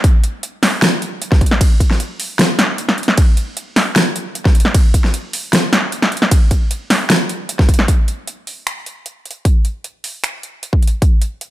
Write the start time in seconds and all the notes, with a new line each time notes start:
0.04 kick, closed hi-hat
0.24 closed hi-hat
0.43 closed hi-hat
0.63 snare, open hi-hat
0.82 snare, closed hi-hat
1.02 closed hi-hat
1.22 closed hi-hat
1.32 kick, snare
1.41 kick, closed hi-hat
1.46 closed hi-hat
1.51 snare
1.61 kick, closed hi-hat, ride
1.80 kick, closed hi-hat
1.91 snare
2.00 closed hi-hat
2.20 open hi-hat
2.39 snare, closed hi-hat
2.59 snare, closed hi-hat
2.78 closed hi-hat
2.89 snare
2.98 closed hi-hat
3.03 closed hi-hat
3.08 snare
3.17 kick, closed hi-hat, ride
3.37 closed hi-hat
3.57 closed hi-hat
3.76 snare, open hi-hat
3.96 snare, closed hi-hat
4.16 closed hi-hat
4.35 closed hi-hat
4.45 kick, snare
4.55 closed hi-hat
4.60 closed hi-hat
4.65 snare
4.74 kick, closed hi-hat, ride
4.94 kick, closed hi-hat
5.04 snare
5.14 closed hi-hat
5.33 open hi-hat
5.53 snare, closed hi-hat
5.73 snare, closed hi-hat
5.92 closed hi-hat
6.02 snare
6.12 closed hi-hat
6.17 closed hi-hat
6.22 snare
6.31 kick, closed hi-hat, ride
6.51 kick, closed hi-hat
6.71 closed hi-hat
6.90 snare, open hi-hat
7.10 snare, closed hi-hat
7.29 closed hi-hat
7.49 closed hi-hat
7.59 kick, snare
7.69 kick, closed hi-hat
7.74 closed hi-hat
7.79 snare
7.88 kick, closed hi-hat
8.08 closed hi-hat
8.27 closed hi-hat
8.47 open hi-hat
8.67 finger snap, closed hi-hat
8.86 closed hi-hat
9.06 closed hi-hat
9.26 closed hi-hat
9.31 closed hi-hat
9.45 kick, closed hi-hat
9.65 closed hi-hat
9.84 closed hi-hat
10.04 open hi-hat
10.24 finger snap, closed hi-hat
10.43 closed hi-hat
10.63 closed hi-hat
10.73 kick
10.83 closed hi-hat
10.87 closed hi-hat
11.02 kick, closed hi-hat
11.22 closed hi-hat
11.41 closed hi-hat